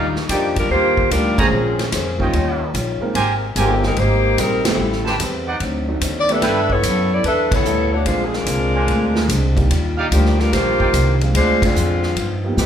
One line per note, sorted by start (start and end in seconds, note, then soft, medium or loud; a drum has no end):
0.00 0.28 D#2 medium
0.00 0.17 D#3 medium
0.00 0.13 G3 soft
0.00 0.17 G3 soft
0.00 0.13 A#3 soft
0.00 0.13 D4 soft
0.00 0.18 D4 soft
0.00 0.13 D#4 soft
0.00 0.13 F4 soft
0.00 0.18 F4 soft
0.16 snare soft
0.28 0.69 F2 medium
0.28 0.58 D#3 medium
0.28 0.56 F3 medium
0.28 0.58 G3 medium
0.28 0.56 A#3 medium
0.28 0.58 D4 medium
0.28 0.56 D4 medium
0.28 0.47 D#4 medium
0.28 0.58 F4 medium
0.28 0.47 G4 medium
0.28 0.56 G4 medium
0.28 0.47 D5 medium
0.28 0.47 G5 medium
0.28 kick soft
0.28 hi-hat pedal soft
0.28 ride medium
0.56 0.70 G3 medium
0.56 0.70 D4 medium
0.56 0.69 F4 medium
0.56 0.70 A#4 medium
0.56 kick soft
0.56 ride medium
0.70 1.10 D#2 medium
0.70 0.99 D#3 soft
0.70 0.99 G3 soft
0.70 1.08 A#3 medium
0.70 1.00 D4 soft
0.70 1.08 F4 medium
0.70 1.00 F4 soft
0.70 1.08 G4 medium
0.70 1.08 C5 loud
0.70 kick soft
0.97 kick medium
1.10 1.50 D2 medium
1.10 1.39 D#3 medium
1.10 1.39 G3 medium
1.10 1.40 D4 medium
1.10 1.39 D4 medium
1.10 1.39 F4 medium
1.10 1.40 F4 medium
1.10 1.39 A#4 medium
1.10 kick soft
1.10 hi-hat pedal soft
1.10 ride medium
1.38 1.93 F3 medium
1.38 1.50 G#3 medium
1.38 1.50 A#3 soft
1.38 1.50 C4 soft
1.38 1.93 C4 medium
1.38 1.51 C#4 medium
1.38 1.93 C#4 medium
1.38 1.51 F4 medium
1.38 1.47 G#4 loud
1.38 1.93 G#4 medium
1.38 1.47 C5 medium
1.38 1.47 C#5 medium
1.38 1.47 A#5 loud
1.38 kick medium
1.38 ride medium
1.51 1.91 A#1 medium
1.51 1.80 A#3 soft
1.51 1.80 C#4 soft
1.51 1.81 G#4 soft
1.51 1.81 C5 soft
1.79 snare soft
1.79 ride soft
1.92 2.32 F2 medium
1.92 2.21 A#3 medium
1.92 2.21 C#4 medium
1.92 2.21 G#4 medium
1.92 2.22 C5 medium
1.92 kick soft
1.92 snare soft
1.92 hi-hat pedal medium
1.92 ride medium
2.18 2.31 G3 medium
2.18 2.32 A#3 medium
2.18 2.32 C#4 medium
2.18 2.32 D#4 medium
2.18 2.32 F4 medium
2.18 2.72 F4 medium
2.18 2.72 C#5 medium
2.18 2.72 D#5 medium
2.18 2.72 G5 medium
2.18 kick soft
2.32 2.73 D#2 medium
2.32 2.61 D#3 soft
2.32 2.62 G3 soft
2.32 2.62 C#4 medium
2.32 2.63 F4 medium
2.32 kick soft
2.32 ride soft
2.74 3.00 A#1 medium
2.74 3.03 D#3 medium
2.74 3.03 G3 medium
2.74 3.03 C#4 medium
2.74 3.03 F4 medium
2.74 kick soft
2.74 hi-hat pedal soft
2.74 ride medium
3.01 3.13 G#3 medium
3.01 3.13 A#3 medium
3.01 3.14 C4 medium
3.01 3.14 D#4 medium
3.01 3.14 A#4 medium
3.01 muted upright bass stroke soft
3.13 3.55 G#1 medium
3.13 3.43 G#3 soft
3.13 3.43 C4 medium
3.13 3.44 G4 medium
3.13 3.34 G4 medium
3.13 3.34 A#4 medium
3.13 3.44 A#4 medium
3.13 3.34 C5 medium
3.13 3.34 G#5 loud
3.13 kick soft
3.13 ride medium
3.55 3.95 G1 medium
3.55 3.83 D#3 medium
3.55 3.84 G#3 medium
3.55 3.83 A#3 medium
3.55 3.85 C4 medium
3.55 3.83 C4 medium
3.55 3.74 G4 medium
3.55 3.85 G4 medium
3.55 3.83 G4 medium
3.55 3.74 A#4 medium
3.55 3.85 A#4 medium
3.55 3.74 C5 medium
3.55 3.74 G#5 medium
3.55 kick soft
3.55 hi-hat pedal medium
3.55 ride medium
3.83 3.97 G3 medium
3.83 3.97 C4 medium
3.83 3.97 D#4 medium
3.83 3.97 A#4 medium
3.83 snare soft
3.96 4.36 G#1 medium
3.96 4.25 G#3 soft
3.96 4.39 A#3 loud
3.96 4.26 C4 soft
3.96 4.38 D#4 medium
3.96 4.26 G4 soft
3.96 4.39 G4 medium
3.96 4.26 A#4 medium
3.96 4.39 C5 loud
3.96 kick soft
3.96 ride soft
4.37 4.77 A#1 medium
4.37 4.66 G3 medium
4.37 4.66 G#3 medium
4.37 4.66 C4 medium
4.37 4.65 C4 medium
4.37 4.66 D#4 medium
4.37 4.67 G4 medium
4.37 4.67 A#4 medium
4.37 4.66 A#4 medium
4.37 kick soft
4.37 hi-hat pedal medium
4.37 ride medium
4.64 5.17 G3 medium
4.64 4.77 A3 medium
4.64 4.77 B3 medium
4.64 4.77 C4 medium
4.64 5.16 C4 medium
4.64 4.77 E4 medium
4.64 5.17 E4 medium
4.64 4.78 G4 medium
4.64 5.16 A4 medium
4.64 snare medium
4.64 ride medium
4.78 5.18 A1 medium
4.78 5.07 A3 soft
4.78 5.08 C4 soft
4.78 5.08 G4 soft
4.78 5.08 B4 medium
4.92 snare soft
5.05 5.15 G4 medium
5.05 5.15 B4 medium
5.05 5.15 C5 medium
5.05 5.15 A5 medium
5.05 snare soft
5.19 5.59 E2 medium
5.19 5.48 A3 medium
5.19 5.48 C4 medium
5.19 5.49 G4 medium
5.19 5.49 B4 medium
5.19 kick soft
5.19 hi-hat pedal soft
5.19 ride medium
5.46 5.56 D#4 medium
5.46 5.56 C5 medium
5.46 5.56 D5 medium
5.46 5.56 F#5 medium
5.60 6.00 D2 medium
5.60 5.89 D3 soft
5.60 5.89 F#3 soft
5.60 5.90 C4 medium
5.60 5.90 D#4 medium
5.60 kick soft
5.60 ride medium
5.88 6.00 A3 medium
5.88 6.00 C4 medium
5.88 6.00 D4 medium
5.88 6.00 D#4 medium
5.88 6.01 F#4 medium
6.01 6.41 D#2 medium
6.01 6.30 D3 medium
6.01 6.30 F#3 medium
6.01 6.30 C4 medium
6.01 6.30 D#4 medium
6.01 kick soft
6.01 hi-hat pedal medium
6.01 ride medium
6.20 6.29 D5 medium
6.29 6.41 A3 medium
6.29 6.41 B3 medium
6.29 6.41 D4 medium
6.29 6.71 D4 medium
6.29 6.41 E4 medium
6.29 6.41 G4 medium
6.29 6.71 A4 medium
6.29 6.71 B4 medium
6.29 6.71 E5 loud
6.29 ride soft
6.42 6.82 G2 medium
6.42 6.71 G3 soft
6.42 6.71 B3 soft
6.42 6.60 E4 medium
6.42 6.71 E4 soft
6.42 6.60 A4 medium
6.42 6.72 A4 soft
6.42 6.60 B4 medium
6.42 6.61 G5 medium
6.42 kick soft
6.42 snare soft
6.42 ride medium
6.70 7.12 B3 medium
6.70 7.11 E4 medium
6.70 7.12 A4 medium
6.70 7.12 C#5 loud
6.70 kick soft
6.82 7.23 F#2 medium
6.82 7.11 G3 medium
6.82 7.12 B3 medium
6.82 7.12 E4 medium
6.82 7.12 A4 medium
6.82 kick soft
6.82 hi-hat pedal medium
6.82 ride medium
7.13 7.25 B3 medium
7.13 7.25 E4 medium
7.13 7.25 A4 medium
7.13 7.25 D5 medium
7.23 7.64 E2 medium
7.23 7.52 G3 soft
7.23 7.53 B3 soft
7.23 7.51 D4 medium
7.23 7.53 E4 soft
7.23 7.54 A4 soft
7.23 7.51 A4 medium
7.23 7.50 B4 medium
7.23 7.50 E5 loud
7.23 kick soft
7.23 ride soft
7.52 7.94 B3 medium
7.52 7.94 E4 medium
7.52 7.94 A4 medium
7.52 7.93 C#5 medium
7.52 kick medium
7.52 ride medium
7.64 8.05 D2 medium
7.64 7.93 G3 medium
7.64 7.94 B3 medium
7.64 7.94 E4 medium
7.64 7.94 A4 medium
7.64 hi-hat pedal medium
7.94 8.06 A3 medium
7.94 8.06 D4 medium
7.94 8.06 F#4 medium
7.94 8.06 C#5 medium
8.05 8.46 A#1 medium
8.05 8.34 A#2 soft
8.05 8.30 G#3 medium
8.05 8.35 G#3 soft
8.05 8.25 G#3 medium
8.05 8.31 A#3 soft
8.05 8.30 C4 soft
8.05 8.35 C4 soft
8.05 8.31 D4 medium
8.05 8.25 D4 medium
8.05 8.35 D4 medium
8.05 8.31 F4 medium
8.05 8.25 F4 medium
8.05 8.24 C5 loud
8.05 kick soft
8.05 ride medium
8.25 8.34 G#4 medium
8.33 9.57 G#3 medium
8.33 9.57 D4 medium
8.33 9.57 F4 medium
8.33 9.57 A#4 medium
8.33 snare soft
8.46 8.86 C2 medium
8.46 8.75 A#2 medium
8.46 8.76 G#3 medium
8.46 8.76 C4 medium
8.46 8.76 D4 medium
8.46 kick soft
8.46 hi-hat pedal medium
8.46 ride medium
8.74 9.26 D4 medium
8.74 9.26 A#4 medium
8.74 9.26 C5 medium
8.74 9.26 G#5 medium
8.87 9.27 D2 medium
8.87 9.16 A#2 soft
8.87 9.16 G#3 soft
8.87 9.17 C4 soft
8.87 9.17 D4 soft
8.87 kick soft
8.87 ride soft
9.16 snare medium
9.28 9.68 C2 medium
9.28 9.57 A#2 medium
9.28 9.57 G#3 medium
9.28 9.58 C4 medium
9.28 9.58 D4 medium
9.28 kick soft
9.28 hi-hat pedal medium
9.28 ride medium
9.56 9.68 G3 medium
9.56 9.68 A#3 medium
9.56 9.69 D4 medium
9.56 9.69 D#4 medium
9.56 9.69 G4 medium
9.56 kick medium
9.56 ride soft
9.69 10.10 D#2 medium
9.69 9.98 D#3 medium
9.69 9.99 G3 medium
9.69 9.99 D4 medium
9.69 9.99 F4 medium
9.69 kick soft
9.69 ride medium
9.97 10.06 D#4 medium
9.97 10.07 G4 medium
9.97 10.07 D5 medium
9.97 10.07 F5 loud
10.11 10.51 D2 medium
10.11 10.40 D#3 medium
10.11 10.37 F3 medium
10.11 10.40 G3 medium
10.11 10.37 A#3 medium
10.11 10.40 D4 medium
10.11 10.37 D4 medium
10.11 10.40 F4 medium
10.11 10.37 G4 medium
10.11 kick soft
10.11 hi-hat pedal soft
10.11 ride medium
10.25 snare soft
10.39 10.52 G3 medium
10.39 10.52 D4 medium
10.39 10.51 F4 medium
10.39 10.53 A#4 medium
10.39 snare soft
10.52 10.92 A#1 medium
10.52 10.81 D#3 soft
10.52 10.81 G3 soft
10.52 11.21 A#3 loud
10.52 10.81 D4 soft
10.52 11.21 F4 loud
10.52 10.82 F4 soft
10.52 11.21 G4 loud
10.52 11.21 C5 loud
10.52 kick soft
10.52 snare soft
10.52 ride medium
10.80 10.89 D#4 medium
10.80 10.89 G4 medium
10.80 10.89 D5 medium
10.80 10.89 G5 medium
10.80 kick medium
10.93 11.33 C2 medium
10.93 11.22 D#3 medium
10.93 11.22 G3 medium
10.93 11.22 D4 medium
10.93 11.23 F4 medium
10.93 kick soft
10.93 hi-hat pedal medium
10.93 ride medium
11.21 11.33 F3 medium
11.21 11.33 G#3 medium
11.21 11.33 C4 soft
11.21 11.33 D4 soft
11.21 11.34 F4 medium
11.21 ride soft
11.34 11.74 D2 medium
11.34 11.63 D3 soft
11.34 11.63 G#3 soft
11.34 11.61 G#3 medium
11.34 11.63 C4 soft
11.34 11.61 D4 medium
11.34 11.64 F4 soft
11.34 11.61 F4 medium
11.34 11.61 C5 loud
11.34 kick soft
11.34 ride medium
11.62 12.17 G#3 medium
11.62 12.17 C4 medium
11.62 12.17 D4 medium
11.62 12.45 F4 medium
11.62 kick medium
11.62 ride medium
11.75 12.15 F2 medium
11.75 12.04 D3 medium
11.75 12.04 G#3 soft
11.75 12.04 C4 medium
11.75 12.05 F4 medium
11.75 hi-hat pedal medium
12.03 snare soft
12.16 12.56 G2 medium
12.16 12.45 G2 soft
12.16 12.46 F3 soft
12.16 12.46 B3 soft
12.16 12.46 D#4 soft
12.16 kick soft
12.16 ride medium
12.44 12.56 F3 medium
12.44 12.56 A#3 medium
12.44 12.56 B3 soft
12.44 12.57 D#4 soft
12.44 12.57 G4 medium
12.57 12.66 G2 medium
12.57 12.66 A#2 medium
12.57 12.66 F3 medium
12.57 12.66 B3 medium
12.57 12.66 D#4 medium
12.57 12.66 G4 medium
12.57 12.66 B4 medium
12.57 snare soft
12.57 hi-hat pedal soft